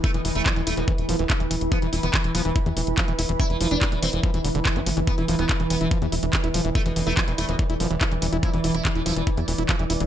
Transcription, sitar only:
\new Staff \with { instrumentName = "Sitar" } { \clef bass \time 4/4 \key c \major \tempo 4 = 143 a16 b,16 b,16 a16 b,16 b,16 a16 b,16 r2 | b16 e16 e16 b16 e16 e16 b16 e16 r2 | e'16 e16 e16 d'16 e16 e16 c'16 e16 r2 | b16 e16 e16 b16 e16 e16 b16 e16 r2 |
a16 b,16 b,16 a16 b,16 b,16 a16 b,16 r2 | e'16 e16 e16 e'16 e16 e16 e'16 e16 r2 | }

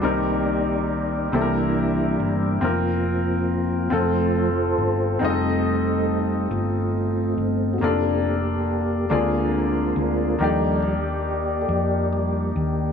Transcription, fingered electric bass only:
\new Staff \with { instrumentName = "Fingered electric bass" } { \clef bass \time 6/8 \key f \mixolydian \tempo 4. = 46 c,4. c,4 g,,8 | f,,4. f,,4 g,,8 | f,,4. g,,4 g,,8 | f,,4. d,4 d,8 |
ees,4. f,4 ees,8 | }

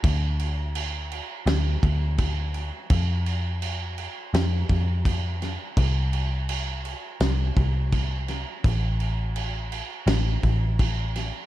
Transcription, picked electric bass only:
\new Staff \with { instrumentName = "Picked electric bass" } { \clef bass \time 4/4 \key d \lydian \tempo 4 = 84 d,2 d,8 d,4. | f,2 f,8 f,4. | c,2 c,8 c,4. | a,,2 a,,8 a,,4. | }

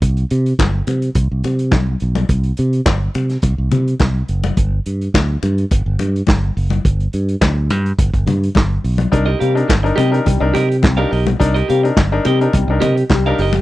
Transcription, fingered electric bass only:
\new Staff \with { instrumentName = "Fingered electric bass" } { \clef bass \time 4/4 \key c \minor \tempo 4 = 106 c,8 c8 g,,8 c8 c,16 c,16 c8 c,8 b,,8 | c,8 c8 g,,8 c8 c,16 c,16 c8 c,8 fis,,8 | g,,8 g,8 d,8 g,8 g,,16 g,,16 g,8 g,,8 fis,,8 | g,,8 g,8 d,8 g,8 g,,16 g,,16 g,8 g,,8 b,,8 |
c,8 c8 g,,8 c8 c,16 c,16 c8 c,8 b,,8 | c,8 c8 g,,8 c8 c,16 c,16 c8 c,8 fis,,8 | }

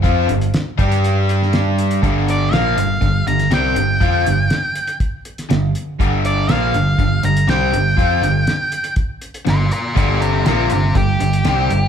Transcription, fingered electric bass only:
\new Staff \with { instrumentName = "Fingered electric bass" } { \clef bass \time 4/4 \key g \minor \tempo 4 = 121 f,8 g,,8 r8 g,2~ g,8 | g,,4 bes,,8 g,,8 g,,8 g,,8 c,8 g,,8 | f,8 g,,8 r2 g,,8 r8 | g,,4 bes,,8 g,,8 g,,8 g,,8 c,8 g,,8 |
f,8 g,,8 r2 g,,8 r8 | g,,4 bes,,8 g,,8 g,,8 g,,8 c,8 g,,8 | }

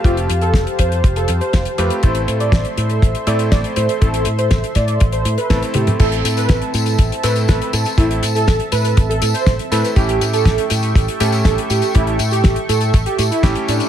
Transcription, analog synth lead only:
\new Staff \with { instrumentName = "Analog synth lead" } { \time 4/4 \key a \minor \tempo 4 = 121 f'8 r16 a'8 r16 c''8 r16 a'16 r16 c''8 r16 b'16 r16 | c''8 r16 d''8. r4 d''16 r16 d''16 r16 c''16 r16 | a'8 r16 c''8 r16 d''8 r16 c''16 r16 b'8 r16 g'16 r16 | a'8 r16 b'8. r4 b'16 r16 b'16 r16 a'16 r16 |
e'8 r16 a'8 r16 b'8 r16 a'16 r16 c''8 r16 b'16 r16 | g'8 r16 a'8. r4 a'16 r16 a'16 r16 g'16 r16 | e'8 r16 g'8 r16 a'8 r16 g'16 r16 e'8 r16 d'16 r16 | }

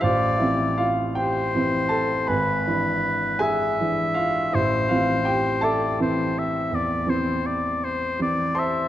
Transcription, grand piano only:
\new Staff \with { instrumentName = "Grand piano" } { \time 12/8 \key a \minor \tempo 4. = 54 << { <f' c'' f''>8 <e' e''>8 <f' f''>8 <g' g''>4 <a' a''>8 <b' gis'' b''>4. <gis' e'' gis''>4 <f' f''>8 | <e' c'' e''>8 <f' f''>8 <g' g''>8 <a' e'' a''>1 <c'' a'' c'''>8 | } \\ { a,,8 <e c'>4. <e c' e'>4 gis,,8 <e d' e'>4. <e d' e'>4 | a,,8 <e c' e'>4. <e c' e'>4 e,8 <e c' e'>4. <e c' e'>4 | } >> }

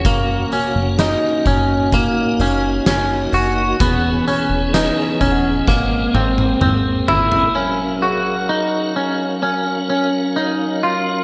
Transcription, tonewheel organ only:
<<
  \new Staff \with { instrumentName = "Tonewheel organ" } { \time 4/4 \key fis \mixolydian \tempo 4 = 64 cis'2 dis'2 | cis'2 ais2 | \key ges \major f''1 | }
  \new Staff \with { instrumentName = "Tonewheel organ" } { \time 4/4 \key fis \mixolydian <ais fis'>1 | <e b gis'>2 <gis bis>2 | \key ges \major <ges des' bes'>1 | }
>>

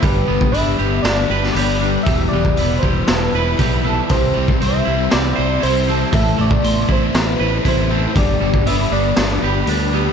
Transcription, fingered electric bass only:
\new Staff \with { instrumentName = "Fingered electric bass" } { \clef bass \time 4/4 \key g \major \tempo 4 = 118 g,,8 g,,8 g,,8 g,,8 g,,8 g,,8 g,,4 | e,,8 e,,8 e,,8 e,,8 e,,8 e,,8 b,,4 | c,8 c,8 c,8 c,8 c,8 c,8 c,4 | a,,8 a,,8 a,,8 a,,8 a,,8 a,,8 a,,4 |
g,,8 g,,8 g,,8 g,,8 g,,8 g,,8 d,4 | }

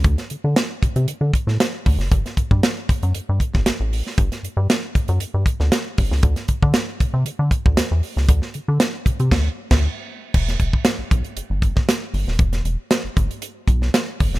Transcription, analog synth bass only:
\new Staff \with { instrumentName = "Analog synth bass" } { \clef bass \time 4/4 \key e \minor \tempo 4 = 117 d,16 r16 d16 d16 r8 c16 c16 d16 d16 r16 a,16 r8 d,16 fis,,16 | g,,16 r16 g,16 g,16 r8 fis,16 fis,16 g,16 g,16 r16 g,,16 a,,16 a,,8 r16 | g,,16 r16 g,16 g,16 r8 fis,16 fis,16 g,16 g,16 r16 d,16 r8 g,,16 cis,16 | d,16 r16 d16 d16 r8 c16 c16 d16 d16 r16 d,16 e,16 e,16 r16 cis,16 |
d,16 r16 d16 d16 r8 c16 c16 d,8 r16 d,8 r8. | e,,8 e,,16 r8 b,,16 b,,16 r16 g,,16 g,,8 r8. g,,16 dis,,16 | e,,8 e,,16 r8 g,,16 g,,16 r8. b,,8 r8 g,,16 dis,,16 | }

